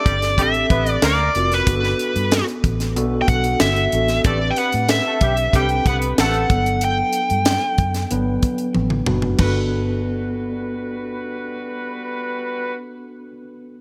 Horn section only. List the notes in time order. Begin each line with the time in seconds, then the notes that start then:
0.04 G3 G4
0.38 G3 G4
0.70 B3 B4
1.03 A#3 A#4
4.25 A3 A4
4.58 B3 B4
5.05 A3 A4
5.22 G3 G4
5.54 G3 G4
5.86 B3 B4
6.19 A3 A4
9.39 G3 F#4 B4